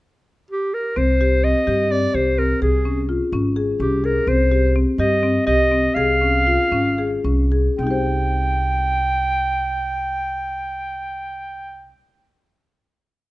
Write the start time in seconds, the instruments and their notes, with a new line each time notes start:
0.50 clarinet G4
0.74 clarinet A#4
0.96 upright bass C2, marimba C4, clarinet C5
1.21 marimba G4
1.44 marimba C4, clarinet D#5
1.67 upright bass G2, marimba G4
1.91 marimba C4, clarinet D5
2.14 upright bass C2, marimba G4, clarinet C5
2.38 marimba C4, clarinet A#4
2.62 upright bass C2, clarinet G#4, marimba G#4
2.85 marimba C#4
3.09 marimba F4
3.32 upright bass G#1, marimba C#4
3.56 marimba G#4
3.80 upright bass C2, marimba C#4, clarinet G4
4.04 marimba G#4, clarinet A#4
4.27 upright bass C2, marimba C4, clarinet C5
4.51 marimba G4
4.76 marimba C4
4.98 upright bass G2, marimba G4, clarinet D#5
5.23 marimba C4
5.46 upright bass C2, marimba G4, clarinet D#5
5.72 marimba C4
5.95 upright bass C2, marimba G#4, clarinet F5
6.21 marimba C#4
6.47 marimba F4
6.72 upright bass G#1, marimba C#4
6.98 marimba G#4
7.24 upright bass C2, marimba C#4
7.52 marimba G#4
7.79 upright bass C2, marimba C4, clarinet G5
7.83 marimba D#4
7.87 marimba G4 C5